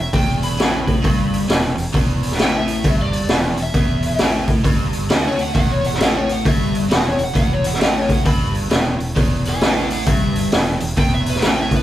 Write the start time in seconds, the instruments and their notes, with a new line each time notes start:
Already playing: fingered electric bass E1
0.00 electric slide guitar E5
0.13 fingered electric bass E1, overdriven electric guitar E2, electric slide guitar G5, kick, open hi-hat
0.43 electric slide guitar B5, open hi-hat
0.57 fingered electric bass A1, overdriven electric guitar A2, snare, open hi-hat
0.88 kick, open hi-hat
1.02 fingered electric bass G1, overdriven electric guitar G2, kick, open hi-hat
1.34 open hi-hat
1.48 fingered electric bass E1, overdriven electric guitar E2, snare, open hi-hat
1.76 fingered electric bass E1, overdriven electric guitar E2, open hi-hat
1.92 fingered electric bass E1, overdriven electric guitar E2, kick, open hi-hat
2.23 open hi-hat
2.32 snare
2.38 fingered electric bass A1, overdriven electric guitar A2, electric slide guitar G5, snare, open hi-hat
2.57 electric slide guitar E5
2.68 open hi-hat
2.84 fingered electric bass G1, overdriven electric guitar G2, kick, open hi-hat
3.02 electric slide guitar D5
3.13 open hi-hat
3.29 fingered electric bass E1, overdriven electric guitar E2, snare, open hi-hat
3.57 fingered electric bass E1, overdriven electric guitar E2, open hi-hat
3.62 electric slide guitar E5
3.74 fingered electric bass E1, overdriven electric guitar E2, kick, open hi-hat
4.03 open hi-hat
4.18 fingered electric bass A1, overdriven electric guitar A2, snare, open hi-hat
4.47 kick, open hi-hat
4.64 fingered electric bass G1, overdriven electric guitar G2, kick, open hi-hat
4.93 open hi-hat
5.10 fingered electric bass D2, overdriven electric guitar D3, electric slide guitar F#5, snare, open hi-hat
5.27 electric slide guitar C#5
5.39 electric slide guitar F#5, open hi-hat
5.55 fingered electric bass E1, overdriven electric guitar E2, electric slide guitar F#5, kick, open hi-hat
5.72 electric slide guitar C#5
5.84 electric slide guitar F#5, open hi-hat
5.93 snare
6.00 fingered electric bass A1, overdriven electric guitar A2, electric slide guitar F#5, snare, open hi-hat
6.17 electric slide guitar C#5
6.29 electric slide guitar F#5, open hi-hat
6.45 fingered electric bass G1, overdriven electric guitar G2, electric slide guitar E5, kick, open hi-hat
6.75 open hi-hat
6.89 fingered electric bass E1, overdriven electric guitar E2, electric slide guitar F#5, snare, open hi-hat
7.08 electric slide guitar C#5
7.19 fingered electric bass E1, overdriven electric guitar E2, open hi-hat
7.24 electric slide guitar F#5
7.34 fingered electric bass E1, overdriven electric guitar E2, kick, open hi-hat
7.39 electric slide guitar F#5
7.53 electric slide guitar C#5
7.64 electric slide guitar F#5, open hi-hat
7.73 snare
7.80 fingered electric bass A1, overdriven electric guitar A2, electric slide guitar F#5, snare, open hi-hat
7.99 electric slide guitar C#5
8.09 electric slide guitar F#5, kick, open hi-hat
8.25 fingered electric bass G1, overdriven electric guitar G2, electric slide guitar B5, kick, open hi-hat
8.54 open hi-hat
8.70 fingered electric bass E1, overdriven electric guitar E2, snare, open hi-hat
8.99 fingered electric bass E1, overdriven electric guitar E2, open hi-hat
9.15 fingered electric bass E1, overdriven electric guitar E2, kick, open hi-hat
9.45 electric slide guitar B4 G#5, open hi-hat
9.61 fingered electric bass A1, overdriven electric guitar A2, electric slide guitar B4 G#5, snare, open hi-hat
9.77 electric slide guitar D5 F#5
9.90 electric slide guitar D5 F#5, open hi-hat
10.06 fingered electric bass G1, overdriven electric guitar G2, electric slide guitar E5, kick, open hi-hat
10.35 open hi-hat
10.52 fingered electric bass E1, overdriven electric guitar E2, snare, open hi-hat
10.80 fingered electric bass E1, overdriven electric guitar E2, open hi-hat
10.97 fingered electric bass E1, overdriven electric guitar E2, electric slide guitar G5, kick, open hi-hat
11.14 electric slide guitar E5
11.26 electric slide guitar B4, open hi-hat
11.35 snare
11.42 fingered electric bass A1, overdriven electric guitar A2, electric slide guitar G5, snare, open hi-hat
11.60 electric slide guitar E5
11.71 kick, open hi-hat
11.75 electric slide guitar B4